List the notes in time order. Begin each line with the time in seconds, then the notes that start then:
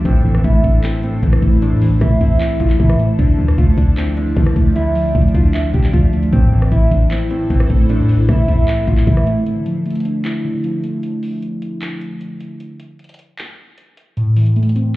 Already playing: A4
0.05 A1 A2 C4 E4 C5 A5, kick, closed hi-hat
0.25 A1 E3
0.35 cross-stick
0.44 A1 A3 E4, kick, closed hi-hat
0.64 A1 C4 D4, kick, closed hi-hat
0.84 C4 E4, clap, closed hi-hat
1.03 A2 C4, closed hi-hat
1.23 A1 E3 C4, kick, closed hi-hat
1.33 cross-stick
1.42 A1 A3, kick, closed hi-hat
1.62 A2 D4, closed hi-hat
1.72 A2
1.82 E3, open hi-hat
1.87 A1
2.01 A2 A3 E4, kick, cross-stick, closed hi-hat
2.21 C2 C4 E4, kick, closed hi-hat
2.40 E4, clap, closed hi-hat
2.60 A1 A2 F4, kick, closed hi-hat
2.70 clap
2.80 A2 E3 E4, kick, closed hi-hat
2.90 cross-stick
2.99 A3, closed hi-hat
3.19 D2 D3 F3 D4 D5 E5, kick, closed hi-hat
3.38 D2 F3
3.48 cross-stick
3.58 D2 A3 F4, kick, closed hi-hat
3.78 D2 D4, kick, closed hi-hat
3.97 C4 E4, clap, closed hi-hat
4.17 D3 D4, closed hi-hat
4.37 D3 F3 D4, kick, closed hi-hat
4.46 cross-stick
4.56 D2 A3, kick, closed hi-hat
4.76 D3 E4, closed hi-hat
4.95 F3, open hi-hat
5.15 D2 A3 F4, kick, closed hi-hat
5.22 closed hi-hat
5.28 closed hi-hat
5.34 D2 D4 F4, kick, closed hi-hat
5.54 E5, clap, closed hi-hat
5.74 D2 D3 G4, kick, closed hi-hat
5.84 clap
5.93 D2 F3 F4, kick, closed hi-hat
6.13 A3, closed hi-hat
6.23 closed hi-hat
6.33 A1 A2 C4 E4 A4 C5, kick, closed hi-hat
6.52 A1 E3
6.62 cross-stick
6.72 A1 A3 E4, kick, closed hi-hat
6.91 A1 C4 D4, kick, closed hi-hat
7.11 C4 E4, clap, closed hi-hat
7.31 A2 C4, closed hi-hat
7.50 A1 E3 C4, kick, closed hi-hat
7.60 cross-stick
7.70 A1 A3, kick, closed hi-hat
7.89 A2 D4, closed hi-hat
7.99 A2
8.09 E3, open hi-hat
8.14 A1
8.29 A2 A3 E4, kick, cross-stick, closed hi-hat
8.48 C2 C4 E4, kick, closed hi-hat
8.68 E4, clap, closed hi-hat
8.88 A1 A2 F4, kick, closed hi-hat
8.97 clap
9.07 A2 E3 E4, kick, closed hi-hat
9.17 cross-stick
9.27 A3, closed hi-hat
9.46 D3, closed hi-hat
9.66 F3, closed hi-hat
9.86 A3, closed hi-hat
9.90 closed hi-hat
9.95 closed hi-hat
10.00 closed hi-hat
10.05 D4, closed hi-hat
10.25 E4, clap, closed hi-hat
10.44 D3
10.64 F3, closed hi-hat
10.84 A3, closed hi-hat
11.03 closed hi-hat
11.23 open hi-hat
11.42 closed hi-hat
11.62 closed hi-hat
11.82 clap, closed hi-hat
12.01 closed hi-hat
12.21 closed hi-hat
12.41 closed hi-hat
12.60 closed hi-hat
12.80 closed hi-hat
12.99 closed hi-hat
13.04 closed hi-hat
13.09 closed hi-hat
13.14 closed hi-hat
13.19 closed hi-hat
13.38 clap, closed hi-hat
13.78 closed hi-hat
13.97 closed hi-hat
14.17 A2, closed hi-hat
14.37 E3, closed hi-hat, open hi-hat
14.46 closed hi-hat
14.56 A3, closed hi-hat
14.63 closed hi-hat
14.69 closed hi-hat
14.76 C4, closed hi-hat